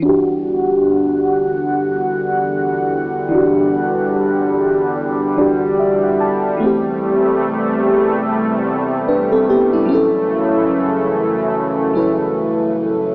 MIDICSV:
0, 0, Header, 1, 3, 480
1, 0, Start_track
1, 0, Key_signature, 1, "minor"
1, 0, Tempo, 821918
1, 23, Time_signature, 4, 2, 24, 8
1, 7678, End_track
2, 0, Start_track
2, 0, Title_t, "FM electric piano"
2, 0, Program_c, 0, 5
2, 0, Note_on_c, 0, 52, 69
2, 15, Note_on_c, 0, 62, 63
2, 32, Note_on_c, 0, 66, 65
2, 51, Note_on_c, 0, 67, 76
2, 123, Control_c, 0, 64, 127
2, 1907, Note_off_c, 0, 52, 0
2, 1916, Note_off_c, 0, 62, 0
2, 1918, Note_on_c, 0, 52, 74
2, 1925, Note_off_c, 0, 66, 0
2, 1934, Note_off_c, 0, 67, 0
2, 1936, Note_on_c, 0, 62, 63
2, 1953, Note_on_c, 0, 66, 65
2, 1972, Note_on_c, 0, 67, 78
2, 3107, Note_off_c, 0, 52, 0
2, 3116, Note_off_c, 0, 62, 0
2, 3125, Note_off_c, 0, 66, 0
2, 3129, Note_on_c, 0, 52, 51
2, 3134, Note_off_c, 0, 67, 0
2, 3139, Note_on_c, 0, 62, 47
2, 3142, Note_on_c, 0, 74, 65
2, 3147, Note_on_c, 0, 66, 50
2, 3155, Note_on_c, 0, 67, 59
2, 3366, Note_off_c, 0, 74, 0
2, 3384, Note_on_c, 0, 76, 63
2, 3513, Note_off_c, 0, 76, 0
2, 3525, Note_on_c, 0, 78, 64
2, 3618, Note_off_c, 0, 78, 0
2, 3624, Note_on_c, 0, 81, 69
2, 3830, Note_off_c, 0, 52, 0
2, 3837, Note_on_c, 0, 52, 68
2, 3847, Note_off_c, 0, 81, 0
2, 3855, Note_on_c, 0, 57, 64
2, 3861, Note_off_c, 0, 62, 0
2, 3865, Note_off_c, 0, 66, 0
2, 3869, Note_off_c, 0, 67, 0
2, 3871, Control_c, 0, 64, 0
2, 3873, Note_on_c, 0, 60, 66
2, 3891, Note_on_c, 0, 67, 78
2, 3963, Control_c, 0, 64, 127
2, 5276, Note_off_c, 0, 57, 0
2, 5285, Note_off_c, 0, 60, 0
2, 5294, Note_off_c, 0, 67, 0
2, 5303, Note_on_c, 0, 71, 57
2, 5306, Note_on_c, 0, 62, 48
2, 5435, Note_off_c, 0, 71, 0
2, 5437, Note_off_c, 0, 62, 0
2, 5443, Note_on_c, 0, 69, 70
2, 5446, Note_on_c, 0, 60, 55
2, 5538, Note_off_c, 0, 69, 0
2, 5540, Note_off_c, 0, 60, 0
2, 5545, Note_on_c, 0, 67, 69
2, 5548, Note_on_c, 0, 59, 57
2, 5676, Note_off_c, 0, 67, 0
2, 5678, Note_off_c, 0, 59, 0
2, 5683, Note_on_c, 0, 64, 58
2, 5685, Note_on_c, 0, 55, 53
2, 5747, Note_off_c, 0, 52, 0
2, 5755, Note_on_c, 0, 54, 68
2, 5774, Note_on_c, 0, 61, 66
2, 5784, Note_off_c, 0, 64, 0
2, 5790, Control_c, 0, 64, 0
2, 5791, Note_on_c, 0, 64, 63
2, 5809, Note_on_c, 0, 69, 77
2, 5874, Control_c, 0, 64, 127
2, 5912, Note_off_c, 0, 55, 0
2, 6946, Note_off_c, 0, 54, 0
2, 6955, Note_off_c, 0, 61, 0
2, 6964, Note_off_c, 0, 64, 0
2, 6970, Note_on_c, 0, 54, 50
2, 6973, Note_off_c, 0, 69, 0
2, 6980, Note_on_c, 0, 61, 51
2, 6988, Note_on_c, 0, 64, 50
2, 6997, Note_on_c, 0, 71, 61
2, 7678, Note_off_c, 0, 54, 0
2, 7678, Note_off_c, 0, 61, 0
2, 7678, Note_off_c, 0, 64, 0
2, 7678, Note_off_c, 0, 71, 0
2, 7678, End_track
3, 0, Start_track
3, 0, Title_t, "Analog synth pad"
3, 0, Program_c, 1, 89
3, 24, Note_on_c, 1, 40, 82
3, 24, Note_on_c, 1, 50, 76
3, 24, Note_on_c, 1, 78, 90
3, 25, Note_on_c, 1, 55, 72
3, 3840, Note_off_c, 1, 40, 0
3, 3840, Note_off_c, 1, 50, 0
3, 3840, Note_off_c, 1, 78, 0
3, 3865, Note_on_c, 1, 40, 83
3, 3865, Note_on_c, 1, 48, 74
3, 3865, Note_on_c, 1, 57, 90
3, 5761, Note_off_c, 1, 55, 0
3, 5765, Note_off_c, 1, 40, 0
3, 5765, Note_off_c, 1, 48, 0
3, 5765, Note_off_c, 1, 57, 0
3, 5784, Note_on_c, 1, 52, 74
3, 5784, Note_on_c, 1, 57, 88
3, 5785, Note_on_c, 1, 42, 80
3, 5785, Note_on_c, 1, 49, 74
3, 7678, Note_off_c, 1, 42, 0
3, 7678, Note_off_c, 1, 49, 0
3, 7678, Note_off_c, 1, 52, 0
3, 7678, Note_off_c, 1, 57, 0
3, 7678, End_track
0, 0, End_of_file